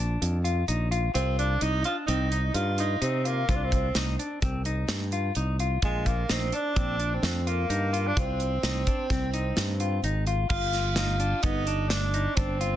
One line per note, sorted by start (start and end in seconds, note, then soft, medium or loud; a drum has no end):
0.00 0.16 A#1 medium
0.00 0.38 D4 medium
0.22 0.63 F2 medium
0.22 closed hi-hat medium
0.44 0.64 F4 medium
0.44 closed hi-hat medium
0.68 1.09 A#1 medium
0.68 0.88 D#4 medium
0.68 closed hi-hat medium
0.91 1.11 F4 medium
0.91 closed hi-hat soft
1.14 1.56 C2 medium
1.14 1.37 C4 medium
1.14 1.54 F4 medium
1.14 closed hi-hat medium
1.39 1.63 D4 medium
1.39 closed hi-hat soft
1.61 1.82 C2 medium
1.61 1.84 D#4 medium
1.61 1.82 D#4 medium
1.61 closed hi-hat medium
1.84 2.05 D4 medium
1.84 1.95 F4 medium
1.84 closed hi-hat medium
2.07 2.49 C2 medium
2.07 2.28 C4 medium
2.07 2.51 D#4 medium
2.07 closed hi-hat medium
2.32 2.72 D#4 medium
2.32 closed hi-hat medium
2.54 2.96 G2 medium
2.54 2.76 F4 medium
2.54 closed hi-hat medium
2.78 3.01 D#4 medium
2.78 2.98 F4 medium
2.78 closed hi-hat soft
3.02 3.43 C3 medium
3.02 3.28 C4 medium
3.02 3.22 D#4 medium
3.02 closed hi-hat medium
3.25 3.52 A#3 medium
3.25 3.45 F4 medium
3.25 closed hi-hat medium
3.49 3.90 C2 medium
3.49 3.56 C4 medium
3.49 3.88 F4 medium
3.49 kick medium
3.49 closed hi-hat medium
3.55 3.65 D4 medium
3.64 3.96 C4 medium
3.72 kick medium
3.72 closed hi-hat soft
3.95 4.16 C2 medium
3.95 4.15 D#4 medium
3.95 snare medium
3.95 closed hi-hat medium
4.19 4.39 D4 medium
4.19 closed hi-hat medium
4.42 4.83 C2 medium
4.42 4.62 C4 medium
4.42 kick medium
4.42 closed hi-hat medium
4.65 5.05 D#4 medium
4.65 closed hi-hat medium
4.88 5.30 G2 medium
4.88 snare medium
4.88 closed hi-hat medium
5.12 5.32 F4 medium
5.12 closed hi-hat medium
5.35 5.77 C2 medium
5.35 5.56 D#4 medium
5.35 closed hi-hat medium
5.59 5.80 F4 medium
5.59 closed hi-hat medium
5.82 6.24 A#1 medium
5.82 6.08 G#3 medium
5.82 6.23 F4 medium
5.82 kick medium
5.82 closed hi-hat medium
6.06 6.30 A#3 medium
6.06 kick medium
6.06 closed hi-hat soft
6.29 6.50 A#1 medium
6.29 6.55 C4 medium
6.29 6.50 D#4 medium
6.29 snare loud
6.29 closed hi-hat medium
6.52 6.73 D4 medium
6.52 7.15 D4 loud
6.52 closed hi-hat soft
6.76 7.17 A#1 medium
6.76 6.96 C4 medium
6.76 kick medium
6.76 closed hi-hat medium
7.00 7.39 D4 medium
7.00 closed hi-hat soft
7.14 7.24 C4 medium
7.23 7.64 F2 medium
7.23 7.49 C4 medium
7.23 snare medium
7.23 closed hi-hat medium
7.47 8.08 A#3 medium
7.47 7.67 F4 medium
7.47 closed hi-hat medium
7.70 8.11 G2 medium
7.70 7.89 D#4 medium
7.70 closed hi-hat medium
7.93 8.13 F4 medium
7.93 closed hi-hat medium
8.07 8.20 D4 medium
8.17 8.58 C2 medium
8.17 10.04 C4 medium
8.17 8.56 F4 medium
8.17 kick medium
8.17 closed hi-hat medium
8.40 closed hi-hat medium
8.63 8.84 C2 medium
8.63 8.83 D#4 medium
8.63 snare medium
8.63 closed hi-hat medium
8.87 9.07 D4 medium
8.87 kick medium
8.87 closed hi-hat medium
9.10 9.51 C2 medium
9.10 9.30 C4 medium
9.10 kick medium
9.10 snare soft
9.10 closed hi-hat medium
9.34 9.73 D#4 medium
9.34 closed hi-hat medium
9.57 9.98 G2 medium
9.57 snare medium
9.57 closed hi-hat medium
9.80 10.00 F4 medium
9.80 closed hi-hat soft
10.03 10.44 G#1 medium
10.03 10.24 D#4 medium
10.03 closed hi-hat medium
10.27 10.47 F4 medium
10.27 closed hi-hat soft
10.49 11.32 G1 medium
10.49 10.93 F4 loud
10.49 10.90 F4 medium
10.49 kick medium
10.49 crash medium
10.73 snare soft
10.73 closed hi-hat medium
10.96 11.17 D#4 medium
10.96 11.40 F4 medium
10.96 snare loud
10.96 closed hi-hat medium
11.20 11.40 D4 medium
11.20 closed hi-hat medium
11.43 12.26 G1 medium
11.43 11.63 B3 medium
11.43 11.90 D#4 medium
11.43 kick loud
11.43 closed hi-hat medium
11.67 12.07 D4 medium
11.67 closed hi-hat medium
11.88 12.37 D4 medium
11.88 snare loud
11.88 closed hi-hat medium
12.14 12.34 D#4 medium
12.14 closed hi-hat medium
12.35 12.76 G1 medium
12.35 12.76 C4 medium
12.35 12.57 D4 medium
12.35 kick loud
12.35 closed hi-hat medium
12.61 12.76 F4 medium
12.61 closed hi-hat medium